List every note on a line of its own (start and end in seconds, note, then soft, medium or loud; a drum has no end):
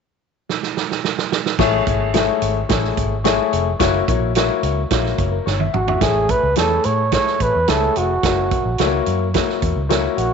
0.49 snare medium
0.63 snare medium
0.77 snare medium
0.91 snare medium
1.04 snare medium
1.18 snare medium
1.32 snare loud
1.46 snare medium
1.59 1.79 A1 medium
1.59 1.81 A3 loud
1.59 1.81 E4 medium
1.59 1.81 G#4 medium
1.59 1.81 C#5 loud
1.59 kick loud
1.59 snare loud
1.59 crash medium
1.86 2.27 G#1 medium
1.86 2.09 A3 medium
1.86 2.09 E4 medium
1.86 2.09 G#4 medium
1.86 2.09 C#5 medium
1.86 kick loud
1.86 closed hi-hat medium
2.14 2.58 A3 medium
2.14 2.58 E4 medium
2.14 2.58 G#4 medium
2.14 2.21 C5 medium
2.14 snare loud
2.14 closed hi-hat medium
2.20 2.61 C#5 medium
2.42 2.62 G#1 medium
2.42 closed hi-hat medium
2.69 2.90 A1 medium
2.69 3.13 A3 medium
2.69 3.13 E4 medium
2.69 3.13 G#4 medium
2.69 3.13 C#5 medium
2.69 kick medium
2.69 snare loud
2.69 closed hi-hat medium
2.84 snare soft
2.97 3.38 G#1 medium
2.97 kick medium
2.97 closed hi-hat medium
3.24 3.69 A3 medium
3.24 3.69 E4 medium
3.24 3.69 G#4 medium
3.24 3.69 C#5 loud
3.24 snare loud
3.24 closed hi-hat medium
3.53 3.73 F1 medium
3.53 closed hi-hat medium
3.79 4.00 F#1 loud
3.79 4.02 A#3 medium
3.79 4.02 E4 loud
3.79 4.02 F#4 medium
3.79 4.02 C#5 loud
3.79 kick loud
3.79 snare loud
3.79 closed hi-hat medium
4.08 4.48 A#1 medium
4.08 4.30 A#3 medium
4.08 4.30 E4 medium
4.08 4.30 F#4 medium
4.08 4.30 C#5 medium
4.08 kick medium
4.08 closed hi-hat medium
4.35 4.80 A#3 medium
4.35 4.80 E4 medium
4.35 4.80 F#4 medium
4.35 4.80 C#5 medium
4.35 snare loud
4.35 closed hi-hat medium
4.63 4.83 C#2 medium
4.63 closed hi-hat medium
4.91 5.11 A#1 medium
4.91 5.35 A#3 medium
4.91 5.35 E4 medium
4.91 5.35 F#4 medium
4.91 5.17 C#5 medium
4.91 kick medium
4.91 snare loud
4.91 closed hi-hat medium
5.06 snare soft
5.18 5.38 F#1 medium
5.18 5.32 C#5 medium
5.18 kick medium
5.18 closed hi-hat medium
5.32 5.45 A#4 medium
5.46 5.67 G1 medium
5.46 5.59 C#5 medium
5.46 snare medium
5.59 5.73 E5 medium
5.59 high tom medium
5.73 5.94 G#1 medium
5.73 6.04 F#4 medium
5.73 5.87 F#5 medium
5.73 mid tom medium
5.87 6.14 E5 medium
5.87 floor tom medium
6.01 6.32 A1 medium
6.01 6.45 A3 medium
6.01 6.45 E4 medium
6.01 6.45 G#4 medium
6.01 6.32 G#4 medium
6.01 6.45 C#5 medium
6.01 kick loud
6.01 snare loud
6.01 closed hi-hat medium
6.29 6.57 B4 loud
6.29 kick medium
6.29 closed hi-hat medium
6.43 6.53 C#2 medium
6.56 6.78 E2 medium
6.56 7.01 A3 medium
6.56 7.01 E4 medium
6.56 7.01 G#4 medium
6.56 6.87 A4 medium
6.56 7.01 C#5 medium
6.56 snare loud
6.56 closed hi-hat medium
6.84 7.15 A2 medium
6.84 7.13 C#5 medium
6.84 closed hi-hat medium
7.12 7.56 A3 medium
7.12 7.56 E4 medium
7.12 7.56 G#4 medium
7.12 7.56 C#5 medium
7.12 7.44 C#5 medium
7.12 kick medium
7.12 snare loud
7.12 closed hi-hat medium
7.27 snare soft
7.40 7.50 A1 medium
7.40 7.71 B4 medium
7.40 kick medium
7.40 closed hi-hat medium
7.55 7.65 E2 medium
7.68 7.88 C#2 medium
7.68 8.12 A3 medium
7.68 8.12 E4 medium
7.68 8.12 G#4 medium
7.68 7.99 A4 medium
7.68 8.12 C#5 medium
7.68 snare loud
7.68 closed hi-hat medium
7.96 8.16 F1 medium
7.96 9.08 F#4 medium
7.96 closed hi-hat medium
8.23 8.54 F#1 medium
8.23 8.67 A#3 medium
8.23 8.67 E4 medium
8.23 8.67 F#4 medium
8.23 8.67 C#5 medium
8.23 kick loud
8.23 snare medium
8.23 closed hi-hat medium
8.51 kick medium
8.51 closed hi-hat medium
8.65 8.75 A#1 medium
8.78 9.00 C#2 medium
8.78 8.86 A3 medium
8.78 9.23 E4 medium
8.78 9.23 F#4 medium
8.78 9.23 C#5 loud
8.78 snare loud
8.78 closed hi-hat medium
8.86 9.27 A#3 medium
9.06 9.37 F#2 medium
9.06 closed hi-hat medium
9.34 9.78 A#3 medium
9.34 9.79 E4 medium
9.34 9.79 F#4 medium
9.34 9.78 C#5 medium
9.34 kick medium
9.34 snare loud
9.34 closed hi-hat medium
9.49 snare soft
9.62 9.73 E2 medium
9.62 kick medium
9.62 closed hi-hat medium
9.76 10.07 C#2 medium
9.89 10.33 A#3 medium
9.89 10.33 E4 medium
9.89 10.33 F#4 medium
9.89 10.33 C#5 loud
9.89 snare loud
9.89 closed hi-hat medium
10.17 10.33 A#1 medium
10.17 10.33 F#4 medium
10.17 closed hi-hat medium